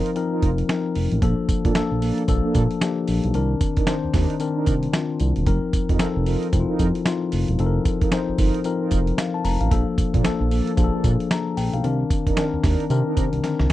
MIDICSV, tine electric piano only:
0, 0, Header, 1, 2, 480
1, 0, Start_track
1, 0, Tempo, 530973
1, 1103, Time_signature, 4, 2, 24, 8
1, 12410, End_track
2, 0, Start_track
2, 0, Title_t, "Tine electric piano"
2, 0, Program_c, 0, 4
2, 0, Control_c, 0, 64, 127
2, 0, Note_on_c, 0, 53, 95
2, 0, Note_on_c, 0, 60, 92
2, 0, Note_on_c, 0, 63, 94
2, 0, Note_on_c, 0, 70, 103
2, 115, Note_off_c, 0, 53, 0
2, 116, Note_off_c, 0, 60, 0
2, 119, Note_off_c, 0, 63, 0
2, 121, Note_off_c, 0, 70, 0
2, 140, Note_on_c, 0, 53, 96
2, 144, Note_on_c, 0, 60, 86
2, 149, Note_on_c, 0, 63, 88
2, 151, Note_on_c, 0, 70, 108
2, 596, Note_off_c, 0, 53, 0
2, 598, Note_off_c, 0, 60, 0
2, 600, Note_off_c, 0, 63, 0
2, 601, Note_off_c, 0, 70, 0
2, 624, Note_on_c, 0, 53, 82
2, 626, Note_on_c, 0, 60, 80
2, 630, Note_on_c, 0, 63, 78
2, 635, Note_on_c, 0, 70, 84
2, 1078, Note_off_c, 0, 53, 0
2, 1079, Note_off_c, 0, 60, 0
2, 1081, Note_off_c, 0, 63, 0
2, 1083, Note_off_c, 0, 70, 0
2, 1103, Note_on_c, 0, 53, 98
2, 1104, Note_on_c, 0, 58, 84
2, 1107, Note_on_c, 0, 62, 92
2, 1113, Note_on_c, 0, 69, 114
2, 1115, Control_c, 0, 64, 0
2, 1266, Control_c, 0, 64, 127
2, 1558, Note_off_c, 0, 53, 0
2, 1558, Note_off_c, 0, 58, 0
2, 1560, Note_off_c, 0, 62, 0
2, 1562, Note_off_c, 0, 69, 0
2, 1585, Note_on_c, 0, 53, 95
2, 1587, Note_on_c, 0, 58, 90
2, 1593, Note_on_c, 0, 62, 84
2, 1597, Note_on_c, 0, 69, 107
2, 2038, Note_off_c, 0, 53, 0
2, 2039, Note_off_c, 0, 58, 0
2, 2042, Note_off_c, 0, 62, 0
2, 2044, Note_off_c, 0, 69, 0
2, 2060, Note_on_c, 0, 53, 97
2, 2063, Note_on_c, 0, 58, 79
2, 2068, Note_on_c, 0, 62, 82
2, 2072, Note_on_c, 0, 69, 100
2, 2516, Note_off_c, 0, 53, 0
2, 2518, Note_off_c, 0, 58, 0
2, 2520, Note_off_c, 0, 62, 0
2, 2522, Note_off_c, 0, 69, 0
2, 2540, Note_on_c, 0, 53, 88
2, 2546, Note_on_c, 0, 58, 82
2, 2548, Note_on_c, 0, 62, 84
2, 2552, Note_on_c, 0, 67, 99
2, 2996, Note_off_c, 0, 53, 0
2, 2999, Note_off_c, 0, 58, 0
2, 3000, Note_off_c, 0, 62, 0
2, 3002, Note_off_c, 0, 67, 0
2, 3018, Note_on_c, 0, 51, 94
2, 3021, Note_on_c, 0, 60, 80
2, 3026, Note_on_c, 0, 62, 86
2, 3030, Note_on_c, 0, 70, 107
2, 3034, Control_c, 0, 64, 0
2, 3197, Control_c, 0, 64, 127
2, 3475, Note_off_c, 0, 51, 0
2, 3477, Note_off_c, 0, 60, 0
2, 3479, Note_off_c, 0, 62, 0
2, 3481, Note_off_c, 0, 70, 0
2, 3494, Note_on_c, 0, 51, 99
2, 3496, Note_on_c, 0, 60, 84
2, 3501, Note_on_c, 0, 62, 85
2, 3504, Note_on_c, 0, 72, 111
2, 3953, Note_off_c, 0, 51, 0
2, 3954, Note_off_c, 0, 60, 0
2, 3957, Note_off_c, 0, 62, 0
2, 3958, Note_off_c, 0, 72, 0
2, 3973, Note_on_c, 0, 51, 89
2, 3976, Note_on_c, 0, 60, 83
2, 3981, Note_on_c, 0, 62, 82
2, 3985, Note_on_c, 0, 70, 95
2, 4432, Note_off_c, 0, 51, 0
2, 4434, Note_off_c, 0, 60, 0
2, 4437, Note_off_c, 0, 62, 0
2, 4438, Note_off_c, 0, 70, 0
2, 4451, Note_on_c, 0, 51, 82
2, 4455, Note_on_c, 0, 60, 75
2, 4458, Note_on_c, 0, 62, 69
2, 4464, Note_on_c, 0, 65, 88
2, 4911, Note_off_c, 0, 51, 0
2, 4913, Note_off_c, 0, 60, 0
2, 4915, Note_off_c, 0, 62, 0
2, 4918, Note_off_c, 0, 65, 0
2, 4934, Note_on_c, 0, 53, 94
2, 4939, Note_on_c, 0, 60, 86
2, 4941, Note_on_c, 0, 63, 90
2, 4946, Note_on_c, 0, 70, 115
2, 4957, Control_c, 0, 64, 0
2, 5094, Control_c, 0, 64, 127
2, 5393, Note_off_c, 0, 53, 0
2, 5395, Note_off_c, 0, 60, 0
2, 5396, Note_off_c, 0, 63, 0
2, 5399, Note_off_c, 0, 70, 0
2, 5415, Note_on_c, 0, 53, 95
2, 5419, Note_on_c, 0, 60, 81
2, 5422, Note_on_c, 0, 63, 87
2, 5425, Note_on_c, 0, 69, 108
2, 5873, Note_off_c, 0, 53, 0
2, 5875, Note_off_c, 0, 60, 0
2, 5877, Note_off_c, 0, 63, 0
2, 5878, Note_off_c, 0, 69, 0
2, 5897, Note_on_c, 0, 53, 91
2, 5901, Note_on_c, 0, 60, 77
2, 5903, Note_on_c, 0, 63, 79
2, 5907, Note_on_c, 0, 64, 78
2, 5967, Note_on_c, 0, 65, 94
2, 5975, Note_off_c, 0, 64, 0
2, 6354, Note_off_c, 0, 53, 0
2, 6356, Note_off_c, 0, 60, 0
2, 6357, Note_off_c, 0, 63, 0
2, 6373, Note_off_c, 0, 65, 0
2, 6375, Note_on_c, 0, 53, 89
2, 6377, Note_on_c, 0, 60, 84
2, 6382, Note_on_c, 0, 63, 79
2, 6384, Note_on_c, 0, 65, 98
2, 6833, Note_off_c, 0, 53, 0
2, 6835, Note_off_c, 0, 60, 0
2, 6837, Note_off_c, 0, 63, 0
2, 6838, Note_off_c, 0, 65, 0
2, 6859, Note_on_c, 0, 53, 88
2, 6865, Note_on_c, 0, 60, 82
2, 6866, Note_on_c, 0, 63, 80
2, 6872, Note_on_c, 0, 69, 86
2, 6928, Note_on_c, 0, 70, 99
2, 6937, Note_off_c, 0, 69, 0
2, 7316, Note_off_c, 0, 53, 0
2, 7319, Note_off_c, 0, 60, 0
2, 7319, Note_off_c, 0, 63, 0
2, 7338, Note_on_c, 0, 53, 91
2, 7340, Note_on_c, 0, 60, 87
2, 7342, Note_on_c, 0, 63, 86
2, 7346, Note_on_c, 0, 72, 106
2, 7350, Note_off_c, 0, 70, 0
2, 7795, Note_off_c, 0, 53, 0
2, 7796, Note_off_c, 0, 60, 0
2, 7797, Note_off_c, 0, 63, 0
2, 7799, Note_off_c, 0, 72, 0
2, 7817, Note_on_c, 0, 53, 96
2, 7822, Note_on_c, 0, 60, 82
2, 7824, Note_on_c, 0, 63, 85
2, 7825, Note_on_c, 0, 70, 106
2, 8274, Note_off_c, 0, 53, 0
2, 8277, Note_off_c, 0, 60, 0
2, 8278, Note_off_c, 0, 63, 0
2, 8279, Note_off_c, 0, 70, 0
2, 8301, Note_on_c, 0, 77, 65
2, 8441, Note_off_c, 0, 77, 0
2, 8445, Note_on_c, 0, 81, 72
2, 8536, Note_off_c, 0, 81, 0
2, 8538, Note_on_c, 0, 82, 76
2, 8679, Note_off_c, 0, 82, 0
2, 8684, Note_on_c, 0, 77, 68
2, 8775, Note_on_c, 0, 53, 92
2, 8777, Note_on_c, 0, 58, 97
2, 8783, Note_on_c, 0, 62, 93
2, 8785, Note_on_c, 0, 69, 108
2, 8795, Control_c, 0, 64, 0
2, 8914, Note_off_c, 0, 77, 0
2, 8952, Control_c, 0, 64, 127
2, 9233, Note_off_c, 0, 53, 0
2, 9234, Note_off_c, 0, 58, 0
2, 9237, Note_off_c, 0, 62, 0
2, 9239, Note_off_c, 0, 69, 0
2, 9252, Note_on_c, 0, 53, 101
2, 9256, Note_on_c, 0, 58, 82
2, 9262, Note_on_c, 0, 62, 88
2, 9264, Note_on_c, 0, 69, 104
2, 9712, Note_off_c, 0, 53, 0
2, 9714, Note_off_c, 0, 58, 0
2, 9717, Note_off_c, 0, 62, 0
2, 9718, Note_off_c, 0, 69, 0
2, 9730, Note_on_c, 0, 53, 94
2, 9734, Note_on_c, 0, 58, 88
2, 9738, Note_on_c, 0, 62, 89
2, 9743, Note_on_c, 0, 68, 77
2, 9800, Note_on_c, 0, 69, 97
2, 9813, Note_off_c, 0, 68, 0
2, 10191, Note_off_c, 0, 53, 0
2, 10193, Note_off_c, 0, 58, 0
2, 10195, Note_off_c, 0, 62, 0
2, 10226, Note_off_c, 0, 69, 0
2, 10227, Note_on_c, 0, 82, 65
2, 10453, Note_off_c, 0, 82, 0
2, 10461, Note_on_c, 0, 79, 79
2, 10601, Note_off_c, 0, 79, 0
2, 10608, Note_on_c, 0, 77, 68
2, 10699, Note_on_c, 0, 51, 97
2, 10701, Note_on_c, 0, 60, 89
2, 10707, Note_on_c, 0, 62, 85
2, 10708, Note_on_c, 0, 70, 102
2, 10717, Control_c, 0, 64, 0
2, 10837, Note_off_c, 0, 77, 0
2, 10862, Control_c, 0, 64, 127
2, 11155, Note_off_c, 0, 51, 0
2, 11156, Note_off_c, 0, 60, 0
2, 11159, Note_off_c, 0, 62, 0
2, 11160, Note_off_c, 0, 70, 0
2, 11177, Note_on_c, 0, 51, 90
2, 11181, Note_on_c, 0, 60, 92
2, 11184, Note_on_c, 0, 62, 83
2, 11188, Note_on_c, 0, 70, 103
2, 11634, Note_off_c, 0, 51, 0
2, 11636, Note_off_c, 0, 60, 0
2, 11638, Note_off_c, 0, 62, 0
2, 11640, Note_off_c, 0, 70, 0
2, 11660, Note_on_c, 0, 51, 83
2, 11666, Note_on_c, 0, 60, 86
2, 11668, Note_on_c, 0, 62, 87
2, 11673, Note_on_c, 0, 70, 103
2, 12116, Note_off_c, 0, 51, 0
2, 12119, Note_off_c, 0, 60, 0
2, 12120, Note_off_c, 0, 62, 0
2, 12122, Note_off_c, 0, 70, 0
2, 12138, Note_on_c, 0, 50, 58
2, 12142, Note_on_c, 0, 60, 79
2, 12146, Note_on_c, 0, 62, 75
2, 12147, Note_on_c, 0, 70, 91
2, 12196, Note_on_c, 0, 51, 81
2, 12210, Note_off_c, 0, 50, 0
2, 12410, Note_off_c, 0, 51, 0
2, 12410, Note_off_c, 0, 60, 0
2, 12410, Note_off_c, 0, 62, 0
2, 12410, Note_off_c, 0, 70, 0
2, 12410, End_track
0, 0, End_of_file